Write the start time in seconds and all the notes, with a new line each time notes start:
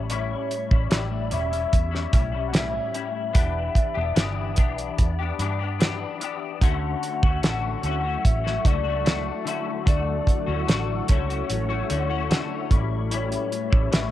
Already playing: A1 E4
0.10 A2 G3 C#4 E4 C#5, closed hi-hat
0.51 closed hi-hat
0.71 A1 G3 C#4 E4, kick
0.90 A1 A2 G3 E4 D5, snare, closed hi-hat
1.31 E1 A2 G3 C#4 E4 E5, closed hi-hat
1.51 G3 C#4 E4, closed hi-hat
1.73 E2, kick, closed hi-hat
1.91 G3 C#4 E4, snare
2.12 B1 A2 G3 C#4 E4, kick, closed hi-hat
2.32 G3 C#4 E4
2.48 F#5
2.52 A2 G3 C#4 E4, snare, closed hi-hat
2.56 E5
2.92 A2 G3 C#4 E4, closed hi-hat
3.17 E5
3.32 E1 E3 B3 D4 G4, kick, closed hi-hat
3.75 kick, closed hi-hat
3.94 E1 B3 D4 G4
4.16 G1 E3 B3 D4 G4, snare, closed hi-hat
4.56 B1 E3 B3 D4 G4, kick, closed hi-hat
4.78 closed hi-hat
4.98 E2, kick, closed hi-hat
5.19 B3 D4 G4
5.39 G2 E3 B3 D4 G4, closed hi-hat
5.59 B3 D4 G4
5.79 E3 B3 D4 G4, snare, closed hi-hat
6.20 E3 B3 D4 G4, closed hi-hat
6.61 D2 D3 F#3 A3 C#4 E4 F#4 A4 F#5, kick, closed hi-hat
7.03 closed hi-hat
7.23 D2 A3 C#4 F#4, kick
7.43 A1 D3 A3 C#4 F#4 F#5, snare, closed hi-hat
7.83 D2 D3 A3 C#4 F#4, closed hi-hat
8.04 A3 C#4 F#4
8.25 A1 E5, kick, closed hi-hat
8.44 A3 C#4 F#4, snare
8.64 C#2 D3 A3 C#4 F#4 D5, kick, closed hi-hat
8.84 A3 C#4 F#4
9.05 A3 F#4, snare, closed hi-hat
9.45 D3 A3 C#4 F#4 E5, closed hi-hat
9.86 D2 D3 A3 F#4 D5, kick, closed hi-hat
10.27 kick, closed hi-hat
10.46 D2 A3 C#4 F#4
10.67 A1 D3 A3 F#4 D5, snare, closed hi-hat
11.08 C#2 D3 A3 C#4 F#4 C#5, kick, closed hi-hat
11.28 A3 C#4 F#4, closed hi-hat
11.50 A1, closed hi-hat
11.69 A3 C#4 F#4
11.89 D2 D3 A3 C#4 F#4, closed hi-hat
12.10 A3 C#4 F#4
12.30 D3 A3 C#4 F#4, snare, closed hi-hat
12.70 A1 A2 G3 A3 C#4 E4 G4 B4 C#5, kick, closed hi-hat
13.11 A2 G3 C#4 E4 C#5, closed hi-hat
13.32 closed hi-hat
13.52 closed hi-hat
13.70 A1 G3 C#4 E4, kick
13.91 A1 A2 G3 C#4 E4 E5, snare, closed hi-hat